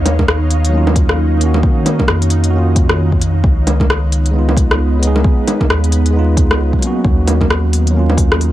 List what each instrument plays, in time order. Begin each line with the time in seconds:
Already playing: sub bass D#2, ambient pad D#3 D#4 C#5 F5
0.06 closed hi-hat, low bongo
0.19 kick, low bongo
0.28 cross-stick
0.51 closed hi-hat
0.65 closed hi-hat
0.69 tine electric piano F#3 A#3
0.75 tine electric piano C#4 F4
0.87 low bongo
0.96 kick, closed hi-hat
1.09 cross-stick
1.37 tine electric piano D#3 A#3, closed hi-hat
1.43 tine electric piano C#4 F#4
1.54 low bongo
1.63 kick
1.86 closed hi-hat, low bongo
1.99 kick, low bongo
2.08 sub bass F2, cross-stick
2.22 closed hi-hat
2.30 closed hi-hat
2.44 closed hi-hat
2.50 tine electric piano A#3 F#4
2.56 tine electric piano C#4 F4
2.76 kick, closed hi-hat
2.89 cross-stick
3.12 kick
3.21 closed hi-hat
3.44 sub bass C#2, ambient pad B3, kick
3.67 closed hi-hat, low bongo
3.80 kick, low bongo
3.90 cross-stick
4.12 closed hi-hat
4.26 closed hi-hat
4.31 tine electric piano G#3 B3
4.36 tine electric piano D#4 F4
4.49 low bongo
4.57 kick, closed hi-hat
4.71 cross-stick
4.99 tine electric piano G#3 B3, closed hi-hat
5.04 tine electric piano D#4 G#4
5.16 low bongo
5.24 kick
5.48 closed hi-hat, low bongo
5.61 kick, low bongo
5.69 sub bass D#2, cross-stick
5.84 closed hi-hat
5.92 closed hi-hat
6.06 closed hi-hat
6.10 tine electric piano G#3 B3
6.16 tine electric piano D#4 F4
6.37 kick, closed hi-hat
6.51 sub bass C#2, cross-stick
6.73 kick
6.79 tine electric piano F#3 A#3, closed hi-hat
6.84 tine electric piano C#4 F#4
7.04 sub bass D#2, ambient pad D#3, kick
7.25 ambient pad D#4, open hi-hat, low bongo
7.32 ambient pad F5
7.41 kick, low bongo
7.50 cross-stick
7.63 ambient pad C#5
7.73 open hi-hat
7.87 tine electric piano F#3, closed hi-hat
7.94 tine electric piano A#3 C#4
7.99 tine electric piano F4
8.10 low bongo
8.18 kick, open hi-hat
8.32 cross-stick
8.41 open hi-hat